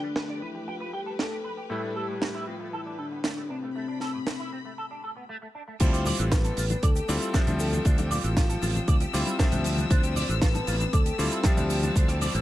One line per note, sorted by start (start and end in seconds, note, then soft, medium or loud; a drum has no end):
0.00 1.67 G2 medium
0.00 1.66 F3 medium
0.00 0.08 G3 medium
0.00 1.67 A3 medium
0.00 5.25 A3 medium
0.00 1.67 B3 medium
0.00 0.44 D4 loud
0.00 1.68 D4 medium
0.00 1.68 F4 medium
0.00 5.25 G4 medium
0.00 3.71 B4 medium
0.16 0.20 B4 medium
0.16 snare loud
0.29 0.39 D5 medium
0.42 0.69 E4 medium
0.42 0.49 B4 medium
0.55 0.61 G4 medium
0.68 0.95 F4 loud
0.68 0.74 G5 medium
0.80 0.90 B4 medium
0.93 1.18 G4 loud
0.93 1.00 G5 medium
1.06 1.13 A4 medium
1.19 1.25 G4 medium
1.19 1.55 A4 loud
1.19 snare medium
1.32 1.36 G4 medium
1.44 1.51 B4 medium
1.57 1.64 G4 medium
1.70 5.29 A2 medium
1.70 5.29 G3 medium
1.70 1.80 A3 medium
1.70 5.30 E4 medium
1.70 1.97 A4 loud
1.70 5.29 B4 medium
1.83 1.93 D4 medium
1.96 2.49 G4 loud
1.96 2.06 A4 medium
2.08 2.12 A2 medium
2.21 2.25 C4 medium
2.21 snare loud
2.34 2.44 E4 medium
2.47 2.54 C4 medium
2.47 2.74 F4 medium
2.60 2.67 A3 medium
2.73 3.00 E4 medium
2.73 2.79 A4 medium
2.86 2.95 D4 medium
2.99 3.24 D4 medium
2.99 3.05 A4 medium
3.11 3.18 B3 medium
3.24 3.31 A3 medium
3.24 3.51 D4 medium
3.24 snare loud
3.37 3.41 A3 medium
3.50 5.29 C4 medium
3.50 3.56 D4 medium
3.63 3.69 A3 medium
3.75 3.85 A3 medium
3.75 5.28 B5 medium
3.88 3.98 D4 medium
4.00 4.11 A4 medium
4.00 snare soft
4.14 4.18 A2 medium
4.27 4.31 C4 medium
4.27 snare loud
4.40 4.49 E4 medium
4.53 4.59 C4 medium
4.65 4.72 A3 medium
4.78 4.84 A4 medium
4.91 5.00 D4 medium
5.04 5.10 A4 medium
5.17 5.23 B3 medium
5.29 5.36 A3 medium
5.42 5.46 A3 medium
5.55 5.61 D4 medium
5.68 5.74 A3 medium
5.80 6.11 D2 loud
5.80 6.57 G3 loud
5.80 6.57 C4 medium
5.80 12.41 C4 medium
5.80 5.90 D4 medium
5.80 6.58 E4 loud
5.80 6.58 F4 loud
5.80 6.28 C5 loud
5.80 9.87 G5 medium
5.80 12.41 E6 medium
5.80 kick loud
5.80 closed hi-hat medium
5.80 crash loud
5.80 high bongo medium
5.80 cabasa soft
5.80 shaker medium
5.93 6.03 G4 medium
5.93 closed hi-hat medium
5.93 shaker soft
6.05 6.16 D5 loud
6.05 open hi-hat loud
6.05 high bongo medium
6.05 low conga medium
6.05 cabasa loud
6.05 shaker medium
6.19 6.50 A1 medium
6.19 6.23 D3 medium
6.19 closed hi-hat medium
6.19 cabasa medium
6.19 shaker soft
6.32 6.36 F4 medium
6.32 6.85 B4 loud
6.32 kick loud
6.32 snare loud
6.32 closed hi-hat medium
6.32 cabasa soft
6.32 shaker medium
6.44 6.54 A4 medium
6.44 closed hi-hat medium
6.44 high bongo medium
6.44 shaker soft
6.57 6.73 A1 loud
6.57 6.64 F4 medium
6.57 open hi-hat loud
6.57 cabasa medium
6.57 shaker medium
6.69 6.77 D4 medium
6.69 closed hi-hat medium
6.69 high bongo medium
6.69 high conga medium
6.69 cabasa soft
6.69 shaker medium
6.83 6.99 D2 medium
6.83 7.36 A4 loud
6.83 6.89 D5 medium
6.83 kick loud
6.83 closed hi-hat medium
6.83 cabasa soft
6.83 shaker medium
6.96 7.05 G4 medium
6.96 closed hi-hat medium
6.96 shaker soft
7.08 7.17 D2 loud
7.08 7.31 G3 medium
7.08 7.31 C4 medium
7.08 7.32 E4 medium
7.08 7.32 F4 loud
7.08 7.15 D5 medium
7.08 open hi-hat loud
7.08 high bongo medium
7.08 cabasa medium
7.08 shaker medium
7.21 7.28 E4 medium
7.21 closed hi-hat medium
7.21 cabasa medium
7.21 shaker medium
7.33 9.11 F3 loud
7.33 9.10 G3 loud
7.33 9.11 C4 medium
7.33 7.41 D4 loud
7.33 7.60 G4 loud
7.33 9.11 E5 medium
7.33 kick loud
7.33 cross-stick medium
7.33 snare loud
7.33 closed hi-hat medium
7.33 high bongo medium
7.33 cabasa soft
7.33 shaker medium
7.47 7.78 D2 loud
7.47 7.51 D4 medium
7.47 closed hi-hat medium
7.47 low conga loud
7.47 shaker soft
7.60 7.66 G4 medium
7.60 7.87 A4 loud
7.60 open hi-hat loud
7.60 cabasa loud
7.60 shaker medium
7.73 7.79 D4 medium
7.73 closed hi-hat medium
7.73 high bongo soft
7.73 high conga medium
7.73 cabasa medium
7.73 shaker medium
7.85 8.16 D2 loud
7.85 7.95 D4 medium
7.85 8.11 F4 loud
7.85 kick loud
7.85 closed hi-hat medium
7.85 cabasa soft
7.85 shaker medium
7.98 8.08 G4 medium
7.98 closed hi-hat medium
7.98 high bongo medium
7.98 shaker soft
8.11 9.61 F4 loud
8.11 8.21 D5 loud
8.11 open hi-hat loud
8.11 low conga medium
8.11 cabasa medium
8.11 shaker medium
8.24 8.55 A1 medium
8.24 8.28 D3 medium
8.24 closed hi-hat medium
8.24 cabasa medium
8.24 shaker soft
8.36 8.41 F4 medium
8.36 kick loud
8.36 snare loud
8.36 closed hi-hat medium
8.36 high bongo medium
8.36 cabasa soft
8.36 shaker medium
8.49 8.59 A4 medium
8.49 closed hi-hat medium
8.49 shaker soft
8.62 8.78 A1 loud
8.62 8.69 F4 medium
8.62 open hi-hat loud
8.62 high bongo medium
8.62 cabasa medium
8.62 shaker medium
8.75 8.82 D4 medium
8.75 closed hi-hat medium
8.75 high conga medium
8.75 cabasa soft
8.75 shaker medium
8.88 9.04 D2 medium
8.88 8.95 D5 medium
8.88 kick loud
8.88 closed hi-hat medium
8.88 cabasa soft
8.88 shaker medium
9.00 9.11 G4 medium
9.00 closed hi-hat medium
9.00 high bongo medium
9.00 shaker soft
9.13 9.22 D2 loud
9.13 9.36 G3 medium
9.13 9.36 C4 medium
9.13 9.36 E4 medium
9.13 9.37 F4 loud
9.13 9.20 D5 medium
9.13 open hi-hat loud
9.13 cabasa medium
9.13 shaker medium
9.26 9.33 E4 medium
9.26 closed hi-hat medium
9.26 high bongo medium
9.26 cabasa soft
9.26 shaker medium
9.39 11.16 F3 loud
9.39 11.16 G3 loud
9.39 11.16 C4 medium
9.39 9.46 D4 loud
9.39 11.16 E5 medium
9.39 kick loud
9.39 cross-stick medium
9.39 snare loud
9.39 closed hi-hat medium
9.39 cabasa soft
9.39 shaker medium
9.52 9.83 D2 loud
9.52 9.56 D4 medium
9.52 closed hi-hat medium
9.52 low conga medium
9.52 shaker soft
9.64 9.71 G4 medium
9.64 open hi-hat medium
9.64 high bongo medium
9.64 cabasa medium
9.64 shaker medium
9.77 9.84 D4 medium
9.77 closed hi-hat medium
9.77 high conga medium
9.77 cabasa soft
9.77 shaker medium
9.90 10.21 D2 loud
9.90 10.00 D4 medium
9.90 10.44 C5 loud
9.90 12.41 A5 medium
9.90 kick loud
9.90 closed hi-hat medium
9.90 high bongo medium
9.90 cabasa soft
9.90 shaker medium
10.03 10.13 G4 medium
10.03 closed hi-hat medium
10.03 shaker soft
10.16 10.26 D5 loud
10.16 open hi-hat loud
10.16 low conga medium
10.16 cabasa loud
10.16 shaker medium
10.29 10.60 A1 medium
10.29 10.33 D3 medium
10.29 closed hi-hat medium
10.29 high bongo soft
10.29 cabasa soft
10.29 shaker soft
10.42 10.46 F4 medium
10.42 10.95 B4 loud
10.42 kick loud
10.42 snare loud
10.42 closed hi-hat medium
10.42 cabasa soft
10.42 shaker medium
10.54 10.64 A4 medium
10.54 closed hi-hat soft
10.54 high bongo medium
10.54 shaker soft
10.67 10.83 A1 loud
10.67 10.74 F4 medium
10.67 open hi-hat loud
10.67 cabasa medium
10.67 shaker medium
10.80 10.87 D4 medium
10.80 closed hi-hat medium
10.80 high conga medium
10.80 cabasa medium
10.80 shaker soft
10.93 11.09 D2 medium
10.93 11.44 A4 loud
10.93 11.00 D5 medium
10.93 kick loud
10.93 closed hi-hat medium
10.93 high bongo medium
10.93 cabasa soft
10.93 shaker medium
11.06 11.16 G4 medium
11.06 closed hi-hat medium
11.06 shaker soft
11.18 11.27 D2 loud
11.18 11.41 G3 loud
11.18 11.41 C4 medium
11.18 11.41 E4 medium
11.18 11.42 F4 loud
11.18 11.25 D5 medium
11.18 open hi-hat loud
11.18 high bongo medium
11.18 cabasa medium
11.18 shaker medium
11.31 11.38 E4 medium
11.31 closed hi-hat medium
11.31 cabasa soft
11.31 shaker medium
11.43 12.41 F3 loud
11.43 12.41 G3 loud
11.43 12.41 C4 medium
11.43 11.51 D4 loud
11.43 11.97 G4 loud
11.43 12.41 E5 medium
11.43 kick loud
11.43 cross-stick medium
11.43 snare loud
11.43 closed hi-hat medium
11.43 cabasa soft
11.43 shaker medium
11.57 11.88 D2 loud
11.57 11.61 D4 medium
11.57 closed hi-hat medium
11.57 high bongo medium
11.57 low conga medium
11.57 shaker soft
11.70 11.77 G4 medium
11.70 open hi-hat loud
11.70 cabasa medium
11.70 shaker medium
11.83 11.90 D4 medium
11.83 closed hi-hat medium
11.83 high bongo medium
11.83 high conga loud
11.83 cabasa soft
11.83 shaker medium
11.96 12.26 D2 loud
11.96 12.06 D4 medium
11.96 12.41 C5 medium
11.96 kick loud
11.96 closed hi-hat medium
11.96 cabasa soft
11.96 shaker medium
12.08 12.18 G4 medium
12.08 cross-stick medium
12.08 closed hi-hat soft
12.08 shaker soft
12.21 12.31 D5 loud
12.21 open hi-hat loud
12.21 high bongo soft
12.21 low conga medium
12.21 cabasa medium
12.21 shaker medium
12.34 12.41 A1 medium
12.34 12.38 D3 medium
12.34 closed hi-hat soft
12.34 cabasa medium
12.34 shaker soft